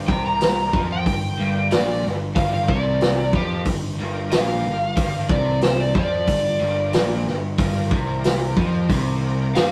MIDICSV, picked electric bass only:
0, 0, Header, 1, 2, 480
1, 0, Start_track
1, 0, Key_signature, -2, "minor"
1, 0, Tempo, 653595
1, 1743, Time_signature, 4, 2, 24, 8
1, 7135, End_track
2, 0, Start_track
2, 0, Title_t, "Picked electric bass"
2, 0, Program_c, 0, 34
2, 67, Note_on_c, 0, 36, 91
2, 516, Note_off_c, 0, 36, 0
2, 538, Note_on_c, 0, 41, 90
2, 764, Note_off_c, 0, 41, 0
2, 779, Note_on_c, 0, 31, 79
2, 1004, Note_off_c, 0, 31, 0
2, 1026, Note_on_c, 0, 31, 89
2, 1248, Note_off_c, 0, 31, 0
2, 1267, Note_on_c, 0, 34, 95
2, 1488, Note_off_c, 0, 34, 0
2, 1508, Note_on_c, 0, 31, 74
2, 1728, Note_off_c, 0, 31, 0
2, 1734, Note_on_c, 0, 31, 86
2, 1961, Note_off_c, 0, 31, 0
2, 1973, Note_on_c, 0, 36, 102
2, 2428, Note_off_c, 0, 36, 0
2, 2449, Note_on_c, 0, 41, 84
2, 2678, Note_off_c, 0, 41, 0
2, 2687, Note_on_c, 0, 31, 84
2, 2917, Note_off_c, 0, 31, 0
2, 2941, Note_on_c, 0, 31, 88
2, 3164, Note_off_c, 0, 31, 0
2, 3182, Note_on_c, 0, 34, 94
2, 3405, Note_off_c, 0, 34, 0
2, 3425, Note_on_c, 0, 31, 71
2, 3646, Note_off_c, 0, 31, 0
2, 3654, Note_on_c, 0, 31, 92
2, 3880, Note_off_c, 0, 31, 0
2, 3890, Note_on_c, 0, 36, 91
2, 4346, Note_off_c, 0, 36, 0
2, 4370, Note_on_c, 0, 41, 99
2, 4598, Note_off_c, 0, 41, 0
2, 4607, Note_on_c, 0, 31, 82
2, 4837, Note_off_c, 0, 31, 0
2, 4857, Note_on_c, 0, 31, 94
2, 5082, Note_off_c, 0, 31, 0
2, 5087, Note_on_c, 0, 34, 101
2, 5317, Note_off_c, 0, 34, 0
2, 5338, Note_on_c, 0, 31, 66
2, 5563, Note_off_c, 0, 31, 0
2, 5572, Note_on_c, 0, 31, 87
2, 5799, Note_off_c, 0, 31, 0
2, 5812, Note_on_c, 0, 36, 89
2, 6267, Note_off_c, 0, 36, 0
2, 6294, Note_on_c, 0, 41, 82
2, 6521, Note_off_c, 0, 41, 0
2, 6531, Note_on_c, 0, 36, 96
2, 6987, Note_off_c, 0, 36, 0
2, 7015, Note_on_c, 0, 43, 89
2, 7135, Note_off_c, 0, 43, 0
2, 7135, End_track
0, 0, End_of_file